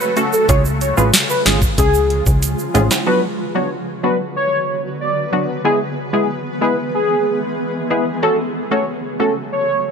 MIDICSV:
0, 0, Header, 1, 6, 480
1, 0, Start_track
1, 0, Tempo, 645161
1, 365, Time_signature, 4, 2, 24, 8
1, 7377, End_track
2, 0, Start_track
2, 0, Title_t, "Soft synth lead"
2, 0, Program_c, 0, 80
2, 4, Note_on_c, 0, 71, 78
2, 107, Note_off_c, 0, 71, 0
2, 244, Note_on_c, 0, 69, 77
2, 347, Note_off_c, 0, 69, 0
2, 364, Note_on_c, 0, 73, 100
2, 467, Note_off_c, 0, 73, 0
2, 603, Note_on_c, 0, 73, 82
2, 707, Note_off_c, 0, 73, 0
2, 724, Note_on_c, 0, 71, 84
2, 827, Note_off_c, 0, 71, 0
2, 964, Note_on_c, 0, 71, 80
2, 1067, Note_off_c, 0, 71, 0
2, 1085, Note_on_c, 0, 68, 78
2, 1188, Note_off_c, 0, 68, 0
2, 1325, Note_on_c, 0, 68, 113
2, 1663, Note_off_c, 0, 68, 0
2, 2285, Note_on_c, 0, 71, 101
2, 2388, Note_off_c, 0, 71, 0
2, 2646, Note_on_c, 0, 73, 74
2, 2748, Note_off_c, 0, 73, 0
2, 3004, Note_on_c, 0, 71, 83
2, 3107, Note_off_c, 0, 71, 0
2, 3244, Note_on_c, 0, 73, 112
2, 3582, Note_off_c, 0, 73, 0
2, 3724, Note_on_c, 0, 74, 86
2, 4062, Note_off_c, 0, 74, 0
2, 4204, Note_on_c, 0, 68, 95
2, 4307, Note_off_c, 0, 68, 0
2, 4565, Note_on_c, 0, 68, 71
2, 4667, Note_off_c, 0, 68, 0
2, 4925, Note_on_c, 0, 71, 79
2, 5028, Note_off_c, 0, 71, 0
2, 5165, Note_on_c, 0, 68, 108
2, 5503, Note_off_c, 0, 68, 0
2, 5885, Note_on_c, 0, 71, 68
2, 5987, Note_off_c, 0, 71, 0
2, 6124, Note_on_c, 0, 69, 105
2, 6227, Note_off_c, 0, 69, 0
2, 6486, Note_on_c, 0, 73, 79
2, 6588, Note_off_c, 0, 73, 0
2, 6844, Note_on_c, 0, 69, 79
2, 6947, Note_off_c, 0, 69, 0
2, 7083, Note_on_c, 0, 73, 99
2, 7377, Note_off_c, 0, 73, 0
2, 7377, End_track
3, 0, Start_track
3, 0, Title_t, "Synth stab"
3, 0, Program_c, 1, 62
3, 123, Note_on_c, 1, 57, 75
3, 125, Note_on_c, 1, 61, 70
3, 126, Note_on_c, 1, 66, 71
3, 128, Note_on_c, 1, 69, 89
3, 250, Note_off_c, 1, 57, 0
3, 251, Note_off_c, 1, 61, 0
3, 252, Note_off_c, 1, 66, 0
3, 253, Note_off_c, 1, 69, 0
3, 362, Note_on_c, 1, 56, 95
3, 364, Note_on_c, 1, 61, 87
3, 365, Note_on_c, 1, 65, 88
3, 366, Note_on_c, 1, 68, 110
3, 490, Note_off_c, 1, 56, 0
3, 490, Note_off_c, 1, 61, 0
3, 491, Note_off_c, 1, 65, 0
3, 492, Note_off_c, 1, 68, 0
3, 722, Note_on_c, 1, 56, 79
3, 724, Note_on_c, 1, 61, 73
3, 725, Note_on_c, 1, 65, 71
3, 726, Note_on_c, 1, 68, 85
3, 850, Note_off_c, 1, 56, 0
3, 850, Note_off_c, 1, 61, 0
3, 851, Note_off_c, 1, 65, 0
3, 852, Note_off_c, 1, 68, 0
3, 1083, Note_on_c, 1, 56, 79
3, 1084, Note_on_c, 1, 61, 72
3, 1085, Note_on_c, 1, 65, 74
3, 1087, Note_on_c, 1, 68, 91
3, 1210, Note_off_c, 1, 56, 0
3, 1211, Note_off_c, 1, 61, 0
3, 1211, Note_off_c, 1, 65, 0
3, 1212, Note_off_c, 1, 68, 0
3, 2040, Note_on_c, 1, 56, 75
3, 2042, Note_on_c, 1, 61, 70
3, 2044, Note_on_c, 1, 65, 69
3, 2045, Note_on_c, 1, 68, 84
3, 2263, Note_off_c, 1, 56, 0
3, 2264, Note_off_c, 1, 61, 0
3, 2265, Note_off_c, 1, 65, 0
3, 2265, Note_off_c, 1, 68, 0
3, 2281, Note_on_c, 1, 54, 95
3, 2282, Note_on_c, 1, 59, 85
3, 2284, Note_on_c, 1, 62, 84
3, 2285, Note_on_c, 1, 66, 101
3, 2409, Note_off_c, 1, 54, 0
3, 2409, Note_off_c, 1, 59, 0
3, 2410, Note_off_c, 1, 62, 0
3, 2411, Note_off_c, 1, 66, 0
3, 2640, Note_on_c, 1, 54, 74
3, 2642, Note_on_c, 1, 59, 65
3, 2644, Note_on_c, 1, 62, 68
3, 2645, Note_on_c, 1, 66, 76
3, 2769, Note_off_c, 1, 54, 0
3, 2770, Note_off_c, 1, 59, 0
3, 2771, Note_off_c, 1, 62, 0
3, 2771, Note_off_c, 1, 66, 0
3, 3001, Note_on_c, 1, 54, 77
3, 3003, Note_on_c, 1, 59, 68
3, 3004, Note_on_c, 1, 62, 71
3, 3005, Note_on_c, 1, 66, 86
3, 3129, Note_off_c, 1, 54, 0
3, 3130, Note_off_c, 1, 59, 0
3, 3131, Note_off_c, 1, 62, 0
3, 3131, Note_off_c, 1, 66, 0
3, 3962, Note_on_c, 1, 54, 74
3, 3963, Note_on_c, 1, 59, 67
3, 3964, Note_on_c, 1, 62, 66
3, 3966, Note_on_c, 1, 66, 81
3, 4089, Note_off_c, 1, 54, 0
3, 4090, Note_off_c, 1, 59, 0
3, 4091, Note_off_c, 1, 62, 0
3, 4092, Note_off_c, 1, 66, 0
3, 4201, Note_on_c, 1, 56, 92
3, 4202, Note_on_c, 1, 59, 88
3, 4204, Note_on_c, 1, 64, 84
3, 4206, Note_on_c, 1, 68, 104
3, 4329, Note_off_c, 1, 56, 0
3, 4330, Note_off_c, 1, 59, 0
3, 4331, Note_off_c, 1, 64, 0
3, 4331, Note_off_c, 1, 68, 0
3, 4561, Note_on_c, 1, 56, 70
3, 4563, Note_on_c, 1, 59, 64
3, 4564, Note_on_c, 1, 64, 64
3, 4566, Note_on_c, 1, 68, 83
3, 4689, Note_off_c, 1, 56, 0
3, 4690, Note_off_c, 1, 59, 0
3, 4690, Note_off_c, 1, 64, 0
3, 4692, Note_off_c, 1, 68, 0
3, 4921, Note_on_c, 1, 56, 78
3, 4922, Note_on_c, 1, 59, 70
3, 4923, Note_on_c, 1, 64, 69
3, 4925, Note_on_c, 1, 68, 84
3, 5049, Note_off_c, 1, 56, 0
3, 5049, Note_off_c, 1, 59, 0
3, 5050, Note_off_c, 1, 64, 0
3, 5051, Note_off_c, 1, 68, 0
3, 5881, Note_on_c, 1, 56, 74
3, 5882, Note_on_c, 1, 59, 66
3, 5884, Note_on_c, 1, 64, 65
3, 5885, Note_on_c, 1, 68, 77
3, 6103, Note_off_c, 1, 56, 0
3, 6104, Note_off_c, 1, 59, 0
3, 6105, Note_off_c, 1, 64, 0
3, 6106, Note_off_c, 1, 68, 0
3, 6120, Note_on_c, 1, 57, 90
3, 6121, Note_on_c, 1, 61, 82
3, 6123, Note_on_c, 1, 66, 85
3, 6125, Note_on_c, 1, 69, 103
3, 6249, Note_off_c, 1, 57, 0
3, 6249, Note_off_c, 1, 61, 0
3, 6250, Note_off_c, 1, 66, 0
3, 6251, Note_off_c, 1, 69, 0
3, 6481, Note_on_c, 1, 57, 73
3, 6482, Note_on_c, 1, 61, 67
3, 6484, Note_on_c, 1, 66, 69
3, 6485, Note_on_c, 1, 69, 78
3, 6609, Note_off_c, 1, 57, 0
3, 6610, Note_off_c, 1, 61, 0
3, 6611, Note_off_c, 1, 66, 0
3, 6611, Note_off_c, 1, 69, 0
3, 6841, Note_on_c, 1, 57, 73
3, 6843, Note_on_c, 1, 61, 69
3, 6844, Note_on_c, 1, 66, 72
3, 6846, Note_on_c, 1, 69, 85
3, 6969, Note_off_c, 1, 57, 0
3, 6970, Note_off_c, 1, 61, 0
3, 6971, Note_off_c, 1, 66, 0
3, 6971, Note_off_c, 1, 69, 0
3, 7377, End_track
4, 0, Start_track
4, 0, Title_t, "Ambient pad"
4, 0, Program_c, 2, 92
4, 0, Note_on_c, 2, 49, 90
4, 0, Note_on_c, 2, 54, 75
4, 0, Note_on_c, 2, 57, 81
4, 0, Note_on_c, 2, 66, 81
4, 0, Note_on_c, 2, 69, 98
4, 345, Note_off_c, 2, 54, 0
4, 345, Note_off_c, 2, 57, 0
4, 345, Note_off_c, 2, 69, 0
4, 346, Note_off_c, 2, 66, 0
4, 364, Note_on_c, 2, 65, 80
4, 364, Note_on_c, 2, 68, 90
4, 365, Note_on_c, 2, 53, 77
4, 365, Note_on_c, 2, 56, 79
4, 2255, Note_off_c, 2, 49, 0
4, 2265, Note_off_c, 2, 56, 0
4, 2265, Note_off_c, 2, 65, 0
4, 2265, Note_off_c, 2, 68, 0
4, 2266, Note_off_c, 2, 53, 0
4, 2285, Note_on_c, 2, 50, 84
4, 2285, Note_on_c, 2, 54, 76
4, 2285, Note_on_c, 2, 59, 73
4, 2285, Note_on_c, 2, 66, 72
4, 2285, Note_on_c, 2, 71, 92
4, 4185, Note_off_c, 2, 50, 0
4, 4185, Note_off_c, 2, 54, 0
4, 4185, Note_off_c, 2, 66, 0
4, 4205, Note_on_c, 2, 52, 80
4, 4205, Note_on_c, 2, 56, 74
4, 4205, Note_on_c, 2, 68, 77
4, 6095, Note_off_c, 2, 59, 0
4, 6095, Note_off_c, 2, 71, 0
4, 6105, Note_off_c, 2, 52, 0
4, 6106, Note_off_c, 2, 56, 0
4, 6106, Note_off_c, 2, 68, 0
4, 6125, Note_on_c, 2, 54, 73
4, 6125, Note_on_c, 2, 66, 76
4, 6125, Note_on_c, 2, 69, 92
4, 6126, Note_on_c, 2, 49, 85
4, 6126, Note_on_c, 2, 57, 76
4, 7377, Note_off_c, 2, 49, 0
4, 7377, Note_off_c, 2, 54, 0
4, 7377, Note_off_c, 2, 57, 0
4, 7377, Note_off_c, 2, 66, 0
4, 7377, Note_off_c, 2, 69, 0
4, 7377, End_track
5, 0, Start_track
5, 0, Title_t, "Analog synth bass"
5, 0, Program_c, 3, 38
5, 364, Note_on_c, 3, 37, 108
5, 695, Note_off_c, 3, 37, 0
5, 725, Note_on_c, 3, 33, 92
5, 833, Note_off_c, 3, 33, 0
5, 1085, Note_on_c, 3, 32, 94
5, 1301, Note_off_c, 3, 32, 0
5, 1325, Note_on_c, 3, 37, 106
5, 1655, Note_off_c, 3, 37, 0
5, 1685, Note_on_c, 3, 37, 90
5, 1901, Note_off_c, 3, 37, 0
5, 2045, Note_on_c, 3, 33, 89
5, 2153, Note_off_c, 3, 33, 0
5, 7377, End_track
6, 0, Start_track
6, 0, Title_t, "Drums"
6, 5, Note_on_c, 9, 82, 50
6, 80, Note_off_c, 9, 82, 0
6, 124, Note_on_c, 9, 42, 54
6, 124, Note_on_c, 9, 82, 51
6, 198, Note_off_c, 9, 82, 0
6, 199, Note_off_c, 9, 42, 0
6, 244, Note_on_c, 9, 82, 83
6, 319, Note_off_c, 9, 82, 0
6, 364, Note_on_c, 9, 36, 110
6, 365, Note_on_c, 9, 42, 85
6, 365, Note_on_c, 9, 82, 71
6, 439, Note_off_c, 9, 36, 0
6, 439, Note_off_c, 9, 42, 0
6, 440, Note_off_c, 9, 82, 0
6, 484, Note_on_c, 9, 82, 57
6, 559, Note_off_c, 9, 82, 0
6, 604, Note_on_c, 9, 82, 53
6, 605, Note_on_c, 9, 42, 57
6, 679, Note_off_c, 9, 42, 0
6, 679, Note_off_c, 9, 82, 0
6, 726, Note_on_c, 9, 82, 75
6, 800, Note_off_c, 9, 82, 0
6, 845, Note_on_c, 9, 38, 108
6, 845, Note_on_c, 9, 42, 80
6, 845, Note_on_c, 9, 82, 83
6, 919, Note_off_c, 9, 38, 0
6, 919, Note_off_c, 9, 42, 0
6, 920, Note_off_c, 9, 82, 0
6, 966, Note_on_c, 9, 82, 56
6, 1040, Note_off_c, 9, 82, 0
6, 1085, Note_on_c, 9, 38, 123
6, 1086, Note_on_c, 9, 42, 58
6, 1160, Note_off_c, 9, 38, 0
6, 1160, Note_off_c, 9, 42, 0
6, 1203, Note_on_c, 9, 36, 77
6, 1204, Note_on_c, 9, 82, 78
6, 1278, Note_off_c, 9, 36, 0
6, 1278, Note_off_c, 9, 82, 0
6, 1325, Note_on_c, 9, 36, 94
6, 1325, Note_on_c, 9, 82, 71
6, 1326, Note_on_c, 9, 42, 80
6, 1399, Note_off_c, 9, 36, 0
6, 1400, Note_off_c, 9, 42, 0
6, 1400, Note_off_c, 9, 82, 0
6, 1445, Note_on_c, 9, 82, 59
6, 1519, Note_off_c, 9, 82, 0
6, 1565, Note_on_c, 9, 42, 56
6, 1639, Note_off_c, 9, 42, 0
6, 1684, Note_on_c, 9, 82, 75
6, 1685, Note_on_c, 9, 36, 86
6, 1758, Note_off_c, 9, 82, 0
6, 1759, Note_off_c, 9, 36, 0
6, 1804, Note_on_c, 9, 42, 81
6, 1806, Note_on_c, 9, 82, 84
6, 1879, Note_off_c, 9, 42, 0
6, 1881, Note_off_c, 9, 82, 0
6, 1925, Note_on_c, 9, 82, 51
6, 2000, Note_off_c, 9, 82, 0
6, 2045, Note_on_c, 9, 42, 56
6, 2045, Note_on_c, 9, 65, 72
6, 2045, Note_on_c, 9, 82, 49
6, 2119, Note_off_c, 9, 42, 0
6, 2119, Note_off_c, 9, 65, 0
6, 2119, Note_off_c, 9, 82, 0
6, 2163, Note_on_c, 9, 38, 69
6, 2165, Note_on_c, 9, 65, 84
6, 2165, Note_on_c, 9, 82, 83
6, 2238, Note_off_c, 9, 38, 0
6, 2240, Note_off_c, 9, 65, 0
6, 2240, Note_off_c, 9, 82, 0
6, 7377, End_track
0, 0, End_of_file